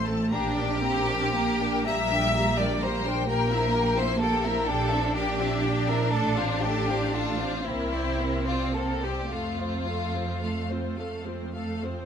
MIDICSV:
0, 0, Header, 1, 6, 480
1, 0, Start_track
1, 0, Key_signature, -1, "major"
1, 0, Tempo, 1010101
1, 148, Time_signature, 6, 3, 24, 8
1, 1119, Tempo, 933126
1, 2559, Tempo, 990099
1, 3519, Tempo, 1052632
1, 3999, Tempo, 1125704
1, 5647, End_track
2, 0, Start_track
2, 0, Title_t, "Violin section"
2, 0, Program_c, 0, 48
2, 26, Note_on_c, 0, 81, 61
2, 142, Note_on_c, 0, 82, 63
2, 143, Note_off_c, 0, 81, 0
2, 253, Note_off_c, 0, 82, 0
2, 262, Note_on_c, 0, 79, 58
2, 384, Note_off_c, 0, 79, 0
2, 386, Note_on_c, 0, 82, 60
2, 511, Note_off_c, 0, 82, 0
2, 513, Note_on_c, 0, 79, 60
2, 638, Note_on_c, 0, 82, 59
2, 639, Note_off_c, 0, 79, 0
2, 755, Note_off_c, 0, 82, 0
2, 761, Note_on_c, 0, 79, 57
2, 881, Note_on_c, 0, 82, 60
2, 883, Note_off_c, 0, 79, 0
2, 1001, Note_off_c, 0, 82, 0
2, 1003, Note_on_c, 0, 79, 59
2, 1118, Note_off_c, 0, 79, 0
2, 1119, Note_on_c, 0, 82, 61
2, 1232, Note_off_c, 0, 82, 0
2, 1237, Note_on_c, 0, 79, 56
2, 1359, Note_off_c, 0, 79, 0
2, 1360, Note_on_c, 0, 82, 63
2, 1476, Note_on_c, 0, 79, 62
2, 1479, Note_off_c, 0, 82, 0
2, 1587, Note_off_c, 0, 79, 0
2, 1593, Note_on_c, 0, 79, 65
2, 1704, Note_off_c, 0, 79, 0
2, 1711, Note_on_c, 0, 76, 60
2, 1829, Note_on_c, 0, 79, 63
2, 1830, Note_off_c, 0, 76, 0
2, 1949, Note_off_c, 0, 79, 0
2, 1949, Note_on_c, 0, 76, 59
2, 2069, Note_on_c, 0, 79, 63
2, 2071, Note_off_c, 0, 76, 0
2, 2184, Note_off_c, 0, 79, 0
2, 2191, Note_on_c, 0, 76, 55
2, 2308, Note_on_c, 0, 79, 61
2, 2314, Note_off_c, 0, 76, 0
2, 2432, Note_on_c, 0, 76, 55
2, 2433, Note_off_c, 0, 79, 0
2, 2553, Note_on_c, 0, 79, 58
2, 2556, Note_off_c, 0, 76, 0
2, 2664, Note_off_c, 0, 79, 0
2, 2671, Note_on_c, 0, 76, 57
2, 2788, Note_on_c, 0, 79, 58
2, 2790, Note_off_c, 0, 76, 0
2, 2907, Note_on_c, 0, 76, 56
2, 2908, Note_off_c, 0, 79, 0
2, 3026, Note_on_c, 0, 81, 58
2, 3028, Note_off_c, 0, 76, 0
2, 3140, Note_off_c, 0, 81, 0
2, 3148, Note_on_c, 0, 77, 53
2, 3265, Note_on_c, 0, 81, 55
2, 3271, Note_off_c, 0, 77, 0
2, 3392, Note_off_c, 0, 81, 0
2, 3393, Note_on_c, 0, 77, 54
2, 3518, Note_off_c, 0, 77, 0
2, 3518, Note_on_c, 0, 81, 53
2, 3628, Note_off_c, 0, 81, 0
2, 3637, Note_on_c, 0, 77, 51
2, 3755, Note_on_c, 0, 72, 54
2, 3756, Note_off_c, 0, 77, 0
2, 3868, Note_off_c, 0, 72, 0
2, 3873, Note_on_c, 0, 74, 51
2, 3998, Note_off_c, 0, 74, 0
2, 4000, Note_on_c, 0, 72, 47
2, 4112, Note_on_c, 0, 74, 47
2, 4117, Note_off_c, 0, 72, 0
2, 4233, Note_off_c, 0, 74, 0
2, 4233, Note_on_c, 0, 72, 46
2, 4345, Note_off_c, 0, 72, 0
2, 4354, Note_on_c, 0, 74, 46
2, 4475, Note_off_c, 0, 74, 0
2, 4478, Note_on_c, 0, 77, 47
2, 4588, Note_off_c, 0, 77, 0
2, 4597, Note_on_c, 0, 72, 43
2, 4713, Note_on_c, 0, 77, 44
2, 4715, Note_off_c, 0, 72, 0
2, 4831, Note_off_c, 0, 77, 0
2, 4836, Note_on_c, 0, 72, 44
2, 4948, Note_on_c, 0, 77, 47
2, 4952, Note_off_c, 0, 72, 0
2, 5059, Note_off_c, 0, 77, 0
2, 5069, Note_on_c, 0, 72, 41
2, 5187, Note_on_c, 0, 77, 43
2, 5188, Note_off_c, 0, 72, 0
2, 5308, Note_off_c, 0, 77, 0
2, 5310, Note_on_c, 0, 72, 42
2, 5428, Note_on_c, 0, 77, 40
2, 5432, Note_off_c, 0, 72, 0
2, 5545, Note_off_c, 0, 77, 0
2, 5554, Note_on_c, 0, 72, 41
2, 5647, Note_off_c, 0, 72, 0
2, 5647, End_track
3, 0, Start_track
3, 0, Title_t, "Violin section"
3, 0, Program_c, 1, 48
3, 143, Note_on_c, 1, 67, 102
3, 863, Note_off_c, 1, 67, 0
3, 882, Note_on_c, 1, 76, 111
3, 1238, Note_off_c, 1, 76, 0
3, 1241, Note_on_c, 1, 74, 93
3, 1361, Note_off_c, 1, 74, 0
3, 1362, Note_on_c, 1, 72, 95
3, 1593, Note_on_c, 1, 70, 101
3, 1597, Note_off_c, 1, 72, 0
3, 1942, Note_off_c, 1, 70, 0
3, 1950, Note_on_c, 1, 72, 95
3, 2071, Note_off_c, 1, 72, 0
3, 2071, Note_on_c, 1, 69, 89
3, 2191, Note_off_c, 1, 69, 0
3, 2191, Note_on_c, 1, 70, 89
3, 2309, Note_on_c, 1, 69, 98
3, 2314, Note_off_c, 1, 70, 0
3, 2556, Note_off_c, 1, 69, 0
3, 2559, Note_on_c, 1, 67, 90
3, 2903, Note_off_c, 1, 67, 0
3, 2909, Note_on_c, 1, 70, 88
3, 3028, Note_on_c, 1, 69, 87
3, 3029, Note_off_c, 1, 70, 0
3, 3149, Note_off_c, 1, 69, 0
3, 3149, Note_on_c, 1, 65, 82
3, 3272, Note_off_c, 1, 65, 0
3, 3272, Note_on_c, 1, 67, 87
3, 3519, Note_off_c, 1, 67, 0
3, 3523, Note_on_c, 1, 65, 78
3, 3755, Note_on_c, 1, 64, 82
3, 3757, Note_off_c, 1, 65, 0
3, 4116, Note_off_c, 1, 64, 0
3, 4118, Note_on_c, 1, 65, 76
3, 4233, Note_off_c, 1, 65, 0
3, 4237, Note_on_c, 1, 69, 70
3, 4356, Note_off_c, 1, 69, 0
3, 4360, Note_on_c, 1, 67, 69
3, 4478, Note_off_c, 1, 67, 0
3, 4479, Note_on_c, 1, 65, 69
3, 5190, Note_off_c, 1, 65, 0
3, 5647, End_track
4, 0, Start_track
4, 0, Title_t, "Viola section"
4, 0, Program_c, 2, 48
4, 35, Note_on_c, 2, 60, 56
4, 35, Note_on_c, 2, 69, 57
4, 145, Note_on_c, 2, 67, 59
4, 148, Note_off_c, 2, 60, 0
4, 148, Note_off_c, 2, 69, 0
4, 148, Note_on_c, 2, 58, 62
4, 255, Note_off_c, 2, 67, 0
4, 256, Note_off_c, 2, 58, 0
4, 264, Note_on_c, 2, 62, 58
4, 264, Note_on_c, 2, 70, 56
4, 385, Note_off_c, 2, 70, 0
4, 386, Note_off_c, 2, 62, 0
4, 386, Note_on_c, 2, 67, 59
4, 387, Note_on_c, 2, 58, 56
4, 507, Note_on_c, 2, 62, 60
4, 507, Note_on_c, 2, 70, 58
4, 511, Note_off_c, 2, 58, 0
4, 511, Note_off_c, 2, 67, 0
4, 636, Note_off_c, 2, 62, 0
4, 636, Note_off_c, 2, 70, 0
4, 639, Note_on_c, 2, 58, 61
4, 639, Note_on_c, 2, 67, 58
4, 755, Note_off_c, 2, 58, 0
4, 756, Note_off_c, 2, 67, 0
4, 763, Note_on_c, 2, 62, 61
4, 765, Note_on_c, 2, 70, 59
4, 882, Note_on_c, 2, 58, 66
4, 883, Note_on_c, 2, 67, 64
4, 885, Note_off_c, 2, 62, 0
4, 885, Note_off_c, 2, 70, 0
4, 998, Note_on_c, 2, 62, 61
4, 1000, Note_on_c, 2, 70, 62
4, 1001, Note_off_c, 2, 58, 0
4, 1002, Note_off_c, 2, 67, 0
4, 1116, Note_off_c, 2, 62, 0
4, 1116, Note_off_c, 2, 70, 0
4, 1117, Note_on_c, 2, 67, 58
4, 1118, Note_on_c, 2, 58, 58
4, 1231, Note_off_c, 2, 67, 0
4, 1232, Note_off_c, 2, 58, 0
4, 1238, Note_on_c, 2, 70, 55
4, 1239, Note_on_c, 2, 62, 57
4, 1359, Note_off_c, 2, 70, 0
4, 1360, Note_off_c, 2, 62, 0
4, 1361, Note_on_c, 2, 67, 62
4, 1362, Note_on_c, 2, 58, 64
4, 1478, Note_on_c, 2, 70, 58
4, 1479, Note_off_c, 2, 67, 0
4, 1480, Note_off_c, 2, 58, 0
4, 1480, Note_on_c, 2, 62, 58
4, 1594, Note_on_c, 2, 67, 65
4, 1595, Note_on_c, 2, 58, 63
4, 1596, Note_off_c, 2, 70, 0
4, 1597, Note_off_c, 2, 62, 0
4, 1704, Note_off_c, 2, 58, 0
4, 1704, Note_off_c, 2, 67, 0
4, 1714, Note_on_c, 2, 60, 59
4, 1714, Note_on_c, 2, 64, 58
4, 1832, Note_off_c, 2, 60, 0
4, 1832, Note_off_c, 2, 64, 0
4, 1832, Note_on_c, 2, 58, 59
4, 1833, Note_on_c, 2, 67, 56
4, 1948, Note_on_c, 2, 60, 58
4, 1949, Note_on_c, 2, 64, 61
4, 1951, Note_off_c, 2, 58, 0
4, 1952, Note_off_c, 2, 67, 0
4, 2069, Note_on_c, 2, 58, 57
4, 2070, Note_off_c, 2, 60, 0
4, 2070, Note_on_c, 2, 67, 57
4, 2071, Note_off_c, 2, 64, 0
4, 2184, Note_off_c, 2, 58, 0
4, 2184, Note_off_c, 2, 67, 0
4, 2191, Note_on_c, 2, 60, 58
4, 2191, Note_on_c, 2, 64, 57
4, 2314, Note_off_c, 2, 60, 0
4, 2314, Note_off_c, 2, 64, 0
4, 2315, Note_on_c, 2, 58, 61
4, 2315, Note_on_c, 2, 67, 61
4, 2437, Note_off_c, 2, 58, 0
4, 2437, Note_off_c, 2, 67, 0
4, 2440, Note_on_c, 2, 60, 57
4, 2440, Note_on_c, 2, 64, 55
4, 2558, Note_on_c, 2, 67, 59
4, 2559, Note_on_c, 2, 58, 59
4, 2560, Note_off_c, 2, 64, 0
4, 2561, Note_off_c, 2, 60, 0
4, 2667, Note_off_c, 2, 58, 0
4, 2667, Note_off_c, 2, 67, 0
4, 2676, Note_on_c, 2, 60, 55
4, 2676, Note_on_c, 2, 64, 56
4, 2792, Note_off_c, 2, 60, 0
4, 2792, Note_off_c, 2, 64, 0
4, 2796, Note_on_c, 2, 58, 57
4, 2796, Note_on_c, 2, 67, 58
4, 2912, Note_off_c, 2, 58, 0
4, 2912, Note_off_c, 2, 67, 0
4, 2913, Note_on_c, 2, 60, 52
4, 2914, Note_on_c, 2, 64, 53
4, 3031, Note_off_c, 2, 60, 0
4, 3031, Note_off_c, 2, 64, 0
4, 3033, Note_on_c, 2, 57, 63
4, 3033, Note_on_c, 2, 69, 57
4, 3144, Note_off_c, 2, 57, 0
4, 3144, Note_off_c, 2, 69, 0
4, 3159, Note_on_c, 2, 72, 52
4, 3160, Note_on_c, 2, 60, 54
4, 3277, Note_off_c, 2, 60, 0
4, 3277, Note_off_c, 2, 72, 0
4, 3278, Note_on_c, 2, 57, 49
4, 3279, Note_on_c, 2, 69, 51
4, 3398, Note_off_c, 2, 57, 0
4, 3399, Note_off_c, 2, 69, 0
4, 3402, Note_on_c, 2, 60, 51
4, 3402, Note_on_c, 2, 72, 54
4, 3522, Note_off_c, 2, 60, 0
4, 3522, Note_off_c, 2, 72, 0
4, 3523, Note_on_c, 2, 57, 50
4, 3523, Note_on_c, 2, 69, 52
4, 3630, Note_off_c, 2, 57, 0
4, 3631, Note_off_c, 2, 69, 0
4, 3639, Note_on_c, 2, 60, 52
4, 3639, Note_on_c, 2, 72, 50
4, 3757, Note_off_c, 2, 60, 0
4, 3757, Note_off_c, 2, 72, 0
4, 3757, Note_on_c, 2, 70, 54
4, 3759, Note_on_c, 2, 58, 54
4, 3869, Note_off_c, 2, 70, 0
4, 3870, Note_off_c, 2, 58, 0
4, 3881, Note_on_c, 2, 60, 49
4, 3881, Note_on_c, 2, 72, 48
4, 4001, Note_off_c, 2, 72, 0
4, 4001, Note_on_c, 2, 58, 50
4, 4001, Note_on_c, 2, 70, 51
4, 4002, Note_off_c, 2, 60, 0
4, 4113, Note_on_c, 2, 72, 45
4, 4115, Note_on_c, 2, 60, 46
4, 4117, Note_off_c, 2, 58, 0
4, 4117, Note_off_c, 2, 70, 0
4, 4234, Note_off_c, 2, 72, 0
4, 4235, Note_off_c, 2, 60, 0
4, 4235, Note_on_c, 2, 58, 49
4, 4237, Note_on_c, 2, 70, 46
4, 4346, Note_off_c, 2, 58, 0
4, 4348, Note_off_c, 2, 70, 0
4, 4359, Note_on_c, 2, 72, 44
4, 4360, Note_on_c, 2, 60, 43
4, 4476, Note_on_c, 2, 57, 47
4, 4476, Note_on_c, 2, 69, 48
4, 4478, Note_off_c, 2, 60, 0
4, 4478, Note_off_c, 2, 72, 0
4, 4587, Note_off_c, 2, 57, 0
4, 4587, Note_off_c, 2, 69, 0
4, 4598, Note_on_c, 2, 60, 44
4, 4598, Note_on_c, 2, 65, 43
4, 4715, Note_off_c, 2, 60, 0
4, 4715, Note_off_c, 2, 65, 0
4, 4716, Note_on_c, 2, 57, 42
4, 4717, Note_on_c, 2, 69, 39
4, 4833, Note_off_c, 2, 57, 0
4, 4833, Note_off_c, 2, 69, 0
4, 4836, Note_on_c, 2, 60, 40
4, 4836, Note_on_c, 2, 65, 42
4, 4951, Note_off_c, 2, 60, 0
4, 4952, Note_off_c, 2, 65, 0
4, 4954, Note_on_c, 2, 69, 40
4, 4955, Note_on_c, 2, 57, 41
4, 5062, Note_off_c, 2, 57, 0
4, 5062, Note_off_c, 2, 69, 0
4, 5074, Note_on_c, 2, 60, 41
4, 5074, Note_on_c, 2, 65, 42
4, 5189, Note_on_c, 2, 69, 45
4, 5191, Note_off_c, 2, 60, 0
4, 5191, Note_off_c, 2, 65, 0
4, 5191, Note_on_c, 2, 57, 45
4, 5309, Note_off_c, 2, 69, 0
4, 5310, Note_off_c, 2, 57, 0
4, 5310, Note_on_c, 2, 65, 41
4, 5311, Note_on_c, 2, 60, 42
4, 5432, Note_off_c, 2, 65, 0
4, 5433, Note_off_c, 2, 60, 0
4, 5435, Note_on_c, 2, 69, 42
4, 5436, Note_on_c, 2, 57, 44
4, 5549, Note_off_c, 2, 57, 0
4, 5549, Note_off_c, 2, 69, 0
4, 5559, Note_on_c, 2, 60, 39
4, 5560, Note_on_c, 2, 65, 38
4, 5647, Note_off_c, 2, 60, 0
4, 5647, Note_off_c, 2, 65, 0
4, 5647, End_track
5, 0, Start_track
5, 0, Title_t, "Cello section"
5, 0, Program_c, 3, 48
5, 0, Note_on_c, 3, 57, 74
5, 148, Note_off_c, 3, 57, 0
5, 148, Note_on_c, 3, 62, 77
5, 385, Note_off_c, 3, 62, 0
5, 387, Note_on_c, 3, 60, 75
5, 633, Note_off_c, 3, 60, 0
5, 636, Note_on_c, 3, 58, 76
5, 884, Note_off_c, 3, 58, 0
5, 885, Note_on_c, 3, 55, 78
5, 1595, Note_on_c, 3, 58, 78
5, 1597, Note_off_c, 3, 55, 0
5, 2314, Note_off_c, 3, 58, 0
5, 2315, Note_on_c, 3, 62, 91
5, 3737, Note_off_c, 3, 62, 0
5, 3755, Note_on_c, 3, 60, 69
5, 4474, Note_on_c, 3, 57, 56
5, 4475, Note_off_c, 3, 60, 0
5, 5537, Note_off_c, 3, 57, 0
5, 5647, End_track
6, 0, Start_track
6, 0, Title_t, "Double bass section"
6, 0, Program_c, 4, 48
6, 0, Note_on_c, 4, 33, 76
6, 67, Note_off_c, 4, 33, 0
6, 145, Note_on_c, 4, 34, 81
6, 798, Note_off_c, 4, 34, 0
6, 884, Note_on_c, 4, 34, 75
6, 1513, Note_off_c, 4, 34, 0
6, 1594, Note_on_c, 4, 34, 87
6, 2228, Note_off_c, 4, 34, 0
6, 2311, Note_on_c, 4, 34, 77
6, 2943, Note_off_c, 4, 34, 0
6, 3030, Note_on_c, 4, 33, 80
6, 3671, Note_off_c, 4, 33, 0
6, 3756, Note_on_c, 4, 36, 66
6, 4391, Note_off_c, 4, 36, 0
6, 4476, Note_on_c, 4, 41, 66
6, 5103, Note_off_c, 4, 41, 0
6, 5186, Note_on_c, 4, 41, 54
6, 5647, Note_off_c, 4, 41, 0
6, 5647, End_track
0, 0, End_of_file